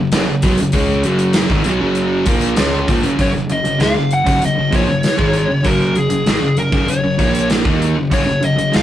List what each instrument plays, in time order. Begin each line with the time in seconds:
Already playing: fingered electric bass F#1, overdriven electric guitar F#2 C#3
0.12 fingered electric bass F#1, overdriven electric guitar F#2 C#3, snare, closed hi-hat
0.28 fingered electric bass F#1, overdriven electric guitar F#2 C#3
0.42 fingered electric bass B1, overdriven electric guitar B2 F#3, kick, closed hi-hat
0.57 fingered electric bass F#1, overdriven electric guitar F#2 C#3, closed hi-hat
0.72 fingered electric bass C#2, overdriven electric guitar C#3 G#3 C#4, kick, closed hi-hat
1.03 fingered electric bass F#1, overdriven electric guitar F#2 C#3 F#3, closed hi-hat
1.19 closed hi-hat
1.33 snare, closed hi-hat
1.49 fingered electric bass G#1, overdriven electric guitar G#2 D#3, kick
1.63 fingered electric bass B1, overdriven electric guitar B2 F#3, closed hi-hat
1.78 fingered electric bass F#1, overdriven electric guitar F#2 C#3 F#3
1.95 closed hi-hat
2.26 fingered electric bass A#1, overdriven electric guitar A#2 F3 A#3, kick, closed hi-hat
2.41 closed hi-hat
2.56 fingered electric bass C#2, overdriven electric guitar C#3 G#3 C#4, snare, closed hi-hat
2.88 fingered electric bass A#1, overdriven electric guitar A#2 F3, kick, closed hi-hat
3.03 fingered electric bass F#1, overdriven electric guitar F#2 C#3, closed hi-hat
3.19 fingered electric bass F#1, overdriven electric guitar F#2 C#3, lead electric guitar C#5, kick, closed hi-hat
3.34 fingered electric bass F#1, overdriven electric guitar F#2 C#3
3.49 fingered electric bass F#1, overdriven electric guitar F#2 C#3, lead electric guitar D#5, closed hi-hat
3.65 fingered electric bass F#1, overdriven electric guitar F#2 C#3, closed hi-hat
3.80 fingered electric bass C#2, overdriven electric guitar C#3 G#3, lead electric guitar F5, snare, closed hi-hat
3.97 fingered electric bass F#1, overdriven electric guitar F#2 C#3
4.11 lead electric guitar F#5, closed hi-hat
4.27 fingered electric bass F#1, overdriven electric guitar F#2 C#3, kick, closed hi-hat
4.39 overdriven electric guitar F#2 C#3, closed hi-hat
4.43 fingered electric bass F#1, overdriven electric guitar F#2 C#3, lead electric guitar D#5
4.55 fingered electric bass F#1, overdriven electric guitar F#2 C#3
4.60 overdriven electric guitar F#2
4.72 fingered electric bass A#1, overdriven electric guitar A#2 F3, lead electric guitar C#5, kick, closed hi-hat
4.90 fingered electric bass F#1, overdriven electric guitar F#2 C#3
5.03 muted overdriven electric guitar stroke, muted fingered electric bass stroke, snare, closed hi-hat
5.18 fingered electric bass G#1, overdriven electric guitar G#2 D#3 G#3, kick
5.33 closed hi-hat
5.50 fingered electric bass F#1, overdriven electric guitar F#2 C#3
5.64 fingered electric bass F#1, overdriven electric guitar F#2 C#3 F#3, lead electric guitar A#4, kick, closed hi-hat
5.95 fingered electric bass F#1, overdriven electric guitar F#2 C#3, lead electric guitar G#4, closed hi-hat
6.10 fingered electric bass F#1, overdriven electric guitar F#2 C#3, closed hi-hat
6.26 fingered electric bass G#1, overdriven electric guitar G#2 D#3, snare, closed hi-hat
6.42 fingered electric bass F#1, overdriven electric guitar F#2 C#3
6.57 fingered electric bass F#1, overdriven electric guitar F#2 C#3, lead electric guitar A#4, closed hi-hat
6.72 fingered electric bass F#1, overdriven electric guitar F#2 C#3, kick
6.88 fingered electric bass F#1, overdriven electric guitar F#2 C#3, lead electric guitar C#5, closed hi-hat
7.04 fingered electric bass F#1, overdriven electric guitar F#2 C#3
7.19 fingered electric bass A#1, overdriven electric guitar A#2 F3 A#3, kick, closed hi-hat
7.35 closed hi-hat
7.50 snare, closed hi-hat
7.65 fingered electric bass D#2, overdriven electric guitar D#3 A#3 D#4, kick
7.82 closed hi-hat
7.97 fingered electric bass F#1, overdriven electric guitar F#2 C#3
8.11 fingered electric bass F#1, overdriven electric guitar F#2 C#3, lead electric guitar C#5, kick, closed hi-hat
8.28 fingered electric bass F#1, overdriven electric guitar F#2 C#3
8.43 fingered electric bass F#1, overdriven electric guitar F#2 C#3, lead electric guitar D#5, closed hi-hat
8.58 fingered electric bass F#1, overdriven electric guitar F#2 C#3, closed hi-hat
8.73 fingered electric bass C#2, overdriven electric guitar C#3 G#3, lead electric guitar F5, snare, closed hi-hat